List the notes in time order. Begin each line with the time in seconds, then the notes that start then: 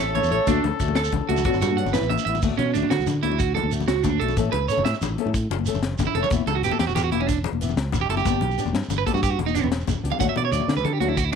Already playing: A1 A4 C#5 E5
0.00 A4
0.15 C#5, closed hi-hat, high conga, low conga
0.23 E2, shekere
0.30 A1 E3 A3 C#4 A4 C#5, closed hi-hat
0.47 D2 A3 D4 F#4, kick, closed hi-hat, high conga, shekere
0.64 D2, closed hi-hat, low conga
0.73 low conga
0.79 D2 A3 D4 F#4, kick, closed hi-hat, shekere
0.88 high conga, low conga
0.95 A4, snare, closed hi-hat, shekere
1.04 shekere
1.12 C#2, kick, closed hi-hat, low conga
1.21 low conga
1.29 C#2 A3 D4 F#4, closed hi-hat, high conga
1.37 low conga, shekere
1.44 G1 F#3 B3 D4 F#4, kick, closed hi-hat, low conga
1.54 G1, shekere
1.61 G2 F#4, closed hi-hat, low conga, shekere
1.71 high conga
1.77 F#3 B3 D4 F#4 F#5, closed hi-hat
1.86 G1, low conga, shekere
1.93 A1 E3 B3 E4 B4, snare, closed hi-hat, low conga, shekere
2.01 A1, shekere
2.10 E5, closed hi-hat, high conga, low conga
2.18 low conga, shekere
2.25 A1 E3 B3 E4 E5, closed hi-hat
2.35 low conga, shekere
2.42 D2 A3 D4 F#4, kick, crash, high conga, shekere
2.51 low conga
2.57 B2 C#4, closed hi-hat, low conga
2.74 D2 A3 D4 F#4, closed hi-hat, low conga, shekere
2.83 high conga, low conga
2.90 D3 F#4, snare, closed hi-hat
2.99 D2, shekere
3.06 D3, closed hi-hat, low conga, shekere
3.23 D2 A3 D4 E4 F#4, closed hi-hat, high conga
3.32 low conga
3.39 F#4, kick, closed hi-hat, shekere
3.48 low conga
3.55 A4, closed hi-hat, low conga
3.63 D2, high conga
3.71 A3 D4 F#4, closed hi-hat, shekere
3.80 low conga, shekere
3.88 C#2 F#4, snare, closed hi-hat, low conga
4.03 D2 D4, kick, closed hi-hat, high conga, low conga, shekere
4.20 B1 A3 D4 F#4 A4, closed hi-hat
4.29 low conga, shekere
4.36 A1 E3 A3 C#4 A4, kick, closed hi-hat, high conga, shekere
4.45 low conga
4.52 C#2 B4, closed hi-hat, low conga
4.62 low conga
4.68 E3 A3 C#4 A4 C#5, closed hi-hat, low conga, shekere
4.77 F#1, high conga, low conga
4.85 A2 E5, snare, closed hi-hat
4.94 low conga, shekere
5.01 A1, closed hi-hat, low conga, shekere
5.18 E3 A3 C#4 A4, closed hi-hat, high conga
5.26 A2, low conga
5.34 kick, closed hi-hat, shekere
5.42 low conga
5.50 F#1, closed hi-hat, low conga
5.59 high conga
5.66 E3 A3 C#4 A4, closed hi-hat, shekere
5.74 F#1, low conga, shekere
5.83 snare, closed hi-hat, low conga
5.92 low conga
5.98 F#1, kick, closed hi-hat, high conga, low conga, shekere
6.07 E4
6.15 F1 E3 A3 C#4 A4, closed hi-hat
6.23 C#5, low conga, shekere
6.30 E1 E3 B3 E4, muted clean electric guitar stroke, muted nylon-string guitar stroke, kick, closed hi-hat, high conga, shekere
6.41 low conga
6.47 C#2 A4, closed hi-hat, low conga
6.55 F#4, low conga
6.62 E1 E3 B3 E4 G4, closed hi-hat, low conga, shekere
6.71 A4, high conga, low conga
6.79 E2 G4, snare, closed hi-hat
6.87 E1 F#4, low conga, shekere
6.95 E2 G4, closed hi-hat, low conga, shekere
7.04 F#4
7.12 E1 E3 B3 E4 G4, closed hi-hat, high conga
7.20 C#4, low conga
7.28 D4, kick, closed hi-hat, shekere
7.36 low conga
7.44 closed hi-hat, low conga
7.52 E1, high conga
7.61 E3 B3 E4 G4, closed hi-hat, shekere
7.69 low conga, shekere
7.76 C#2, snare, closed hi-hat, low conga
7.85 low conga
7.92 E1, kick, closed hi-hat, high conga, low conga, shekere
8.01 G4
8.09 F#1 E3 B3 E4 G4 A4, closed hi-hat
8.17 G4, low conga, shekere
8.25 G1 B3 D4 G4, kick, closed hi-hat, high conga, low conga, shekere
8.34 low conga
8.41 B1, closed hi-hat, low conga
8.50 low conga, shekere
8.58 B3 D4 G4, closed hi-hat, shekere
8.65 E1, high conga, low conga, shekere
8.73 G2, snare, closed hi-hat
8.83 low conga, shekere
8.88 G1, closed hi-hat, low conga, shekere
8.98 B4, low conga
9.06 B3 D4 G4 A4, kick, closed hi-hat, high conga, low conga, shekere
9.14 G2 F#4, low conga, shekere
9.23 G4, kick, closed hi-hat, shekere
9.30 F#4
9.38 E1, closed hi-hat, low conga
9.46 D#4, high conga, shekere
9.55 B3 D4 G4, closed hi-hat, shekere
9.63 E1 B3, low conga
9.72 snare, closed hi-hat, shekere
9.81 shekere
9.88 E1, kick, closed hi-hat, high conga, low conga, shekere
10.03 C#2 B3 D4 G4, closed hi-hat, shekere
10.12 F5, low conga
10.19 D2 F#3 A3 D4 F#4 F#5, kick, closed hi-hat, high conga, shekere
10.28 E5, low conga
10.36 B2 D5, closed hi-hat, low conga
10.44 C#5, low conga
10.52 D2 F#3 A3 D4 F#4 D5, closed hi-hat, low conga, shekere
10.60 high conga, low conga
10.68 D3, snare, closed hi-hat
10.76 D2 B4, low conga, shekere
10.84 D3 A4, closed hi-hat, low conga
10.93 G4
11.00 D2 F#3 A3 D4 F#4, closed hi-hat, high conga
11.09 E4, low conga
11.17 F#4, kick, closed hi-hat, shekere
11.25 E4